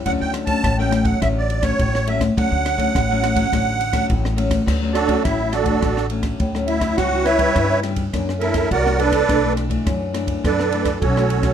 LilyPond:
<<
  \new Staff \with { instrumentName = "Accordion" } { \time 4/4 \key d \major \tempo 4 = 104 fis''16 g''8 a''8 g''8 fis''16 e''16 d''8 cis''8. e''8 | fis''2. r4 | r8 <d' fis' a' d''>8 <e' e''>8 <d' fis' a' d''>4 r4 <e' e''>8 | <fis' fis''>8 <e' b' cis'' e''>4 r4 <e' a' ais' e''>8 <fis' ais' d'' fis''>8 <d' a' b' d''>8~ |
<d' a' b' d''>8 r4. <d' a' b' d''>4 <cis' fis' a' cis''>4 | }
  \new Staff \with { instrumentName = "Nylon-string guitar" } { \time 4/4 \key d \major << { <fis a cis'>8. <fis a cis'>8 <fis a cis'>8. <fis a cis'>8. <fis a cis'>8. <fis a cis'>16 r16 | <fis a cis'>8. <fis a cis'>8 <fis a cis'>8 <fis a cis'>16 <fis a cis'>8 r16 <fis a cis'>8. <fis a cis'>8 | <fis a cis'>16 <fis a cis'>8 <fis a cis'>8. <fis a>8. r16 <fis a cis'>8. <fis a cis'>8. | <g b e'>16 <g b e'>8 <g b e'>8. <g b e'>16 r16 <e ais d'>16 r16 <e ais d'>8 r16 <e ais d'>8. |
<e a d'>16 <e a d'>8 <e a d'>8. <e a d'>8. r16 <e a d'>8 r16 <e a>8. | } \\ { d4 a,4 d4 a,4 | d4 a,4 d4 a,4 | d4 a,4 d4 a,4 | cis4 cis4 fis,4 fis,4 |
b,4 fis,4 b,4 fis,4 | } >> }
  \new Staff \with { instrumentName = "Upright bass" } { \clef bass \time 4/4 \key d \major d,16 d,8. a,,4 a,,4 a,,4 | d,16 d,8. a,,4 a,,4 a,,4 | d,4 a,,4 a,,4 d,4 | cis,4 g,4 fis,4 c,4 |
b,,4 fis,4 fis,4 b,,4 | }
  \new DrumStaff \with { instrumentName = "Drums" } \drummode { \time 4/4 <bd cymr>8 <cymr ss>16 <bd cymr>16 <bd cymr ss>8 <cymr ss>16 <bd cymr>16 <bd cymr ss>8 cymr16 <bd cymr ss>16 <bd cymr>16 ss16 cymr16 <bd cymr ss>16 | <bd cymr>8 <cymr ss>16 <bd cymr>16 <bd cymr ss>8 <cymr ss>16 <bd cymr>16 <bd cymr ss>8 cymr16 <bd cymr ss>16 <bd cymr>16 ss16 cymr16 <bd cymr ss>16 | <cymc bd ss>8 <cymr ss>16 <bd cymr>16 <bd cymr ss>8 <cymr ss>16 <bd cymr>16 <bd cymr ss>16 ss16 cymr16 <bd cymr ss>16 <bd cymr>16 ss16 cymr16 <bd cymr ss>16 | <bd cymr ss>8 <cymr ss>16 <bd cymr>16 <bd cymr ss>8 <cymr ss>16 <bd cymr>16 <bd cymr ss>16 ss16 cymr16 <bd cymr ss>16 <bd cymr>16 ss16 cymr16 <bd cymr ss>16 |
<bd cymr ss>8 <cymr ss>16 <bd cymr>16 <bd cymr ss>8 <cymr ss>16 <bd cymr>16 <bd cymr ss>16 ss16 cymr16 <bd cymr ss>16 <bd cymr>16 ss16 cymr16 <bd cymr ss>16 | }
>>